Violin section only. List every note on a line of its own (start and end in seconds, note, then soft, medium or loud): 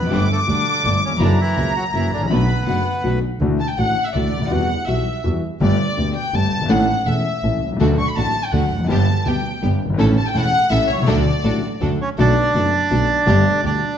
0.11 1.20 D6 loud
1.19 2.30 A#5 loud
2.29 2.66 B5 loud
2.66 3.01 F#5 medium
3.60 3.68 A5 medium
3.68 3.77 G5 medium
3.77 4.05 F#5 loud
4.04 4.14 E5 medium
4.13 4.51 D5 medium
4.49 4.87 F#5 loud
4.87 5.24 E5 medium
5.62 6.12 D5 loud
6.16 6.34 G5 loud
6.34 6.70 A5 loud
6.70 7.07 F#5 loud
7.08 7.62 E5 medium
7.98 8.07 C#6 medium
8.07 8.16 B5 medium
8.16 8.44 A5 loud
8.44 8.53 G5 medium
8.52 8.89 F#5 medium
8.89 9.23 A5 loud
9.26 9.62 G5 medium
10.17 10.25 A5 medium
10.26 10.35 G5 loud
10.35 10.71 F#5 loud
10.71 10.89 E5 loud
10.89 11.07 C#5 loud
11.07 11.81 D5 loud